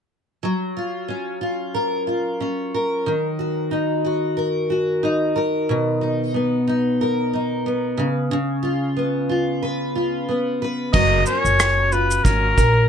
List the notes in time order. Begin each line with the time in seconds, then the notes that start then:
0.43 F#3
0.77 F4
1.08 C#4
1.41 F4
1.74 A#4
2.07 F4
2.40 C#4
2.74 A#4
3.06 D#3
3.39 F#4
3.71 D#4
4.05 F#4
4.37 A#4
4.70 F#4
5.03 D#4
5.36 A#4
5.69 B2
6.01 D#4
6.34 B3
6.67 D#4
7.01 A#4
7.33 D#4
7.66 B3
7.97 C#3
8.31 C#3
8.63 F4
8.96 B3
9.29 F4
9.62 B4
9.95 F4
10.29 B3
10.62 B4
10.93 F#1 F#3 A#4 D#5, kick, crash
11.26 C#4 C#5, shaker
11.45 F#1, shaker
11.60 cross-stick, shaker
11.92 F4 B4, shaker
12.11 shaker
12.24 G#1 C#4 A#4, kick, shaker
12.57 A#1 A#4, kick, shaker